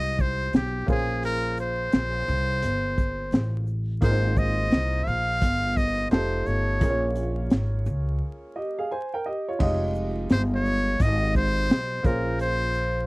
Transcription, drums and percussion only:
0.19 kick medium
0.19 shaker soft
0.53 snare loud
0.53 closed hi-hat medium
0.88 kick loud
0.88 shaker soft
1.23 closed hi-hat medium
1.57 closed hi-hat medium
1.57 shaker medium
1.92 snare loud
1.92 closed hi-hat medium
2.28 shaker medium
2.62 closed hi-hat medium
2.98 kick medium
2.98 shaker soft
3.32 snare loud
3.32 closed hi-hat medium
3.67 shaker soft
4.02 kick loud
4.02 closed hi-hat medium
4.37 kick loud
4.37 shaker medium
4.71 snare medium
4.71 closed hi-hat medium
5.07 shaker medium
5.41 kick medium
5.41 closed hi-hat medium
5.77 kick medium
5.77 shaker medium
6.11 snare loud
6.11 closed hi-hat medium
6.46 closed hi-hat soft
6.46 shaker soft
6.81 kick loud
6.81 closed hi-hat medium
7.15 closed hi-hat medium
7.15 shaker soft
7.50 snare loud
7.50 closed hi-hat medium
7.86 shaker medium
9.60 kick loud
9.60 crash medium
9.95 shaker medium
10.29 snare medium
10.29 closed hi-hat medium
10.65 shaker medium
11.00 kick medium
11.00 closed hi-hat medium
11.35 kick medium
11.35 shaker medium
11.70 snare loud
11.70 closed hi-hat medium
12.04 kick loud
12.04 closed hi-hat soft
12.04 shaker soft
12.39 closed hi-hat medium
12.74 shaker medium

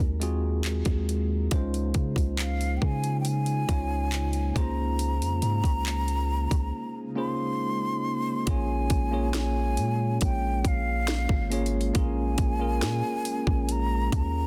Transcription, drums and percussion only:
0.22 closed hi-hat medium
0.64 clap loud
0.64 closed hi-hat medium
0.85 kick medium
0.85 closed hi-hat soft
1.09 closed hi-hat medium
1.51 kick loud
1.51 closed hi-hat medium
1.74 closed hi-hat medium
1.94 kick loud
1.94 closed hi-hat medium
2.16 kick medium
2.16 closed hi-hat medium
2.39 clap loud
2.39 closed hi-hat medium
2.61 closed hi-hat soft
2.82 kick medium
3.04 closed hi-hat medium
3.25 closed hi-hat medium
3.46 closed hi-hat soft
3.69 kick medium
3.69 closed hi-hat medium
4.12 clap loud
4.12 closed hi-hat medium
4.33 closed hi-hat soft
4.56 kick loud
4.56 closed hi-hat medium
4.99 closed hi-hat medium
5.22 closed hi-hat medium
5.42 closed hi-hat medium
5.64 kick medium
5.64 closed hi-hat medium
5.86 clap loud
5.86 closed hi-hat medium
6.08 closed hi-hat soft
6.51 kick medium
6.51 closed hi-hat medium
8.47 kick loud
8.47 closed hi-hat medium
8.90 kick loud
8.90 closed hi-hat medium
9.34 snare loud
9.34 closed hi-hat medium
9.77 closed hi-hat medium
10.21 kick medium
10.21 closed hi-hat medium
10.65 kick loud
10.65 closed hi-hat medium
11.08 snare loud
11.08 closed hi-hat medium
11.29 kick medium
11.52 closed hi-hat medium
11.66 closed hi-hat soft
11.81 closed hi-hat soft
11.95 kick loud
11.95 closed hi-hat medium
12.38 kick loud
12.38 closed hi-hat medium
12.82 snare loud
12.82 closed hi-hat medium
13.25 closed hi-hat medium
13.47 kick medium
13.69 closed hi-hat medium
14.12 kick loud
14.12 closed hi-hat medium

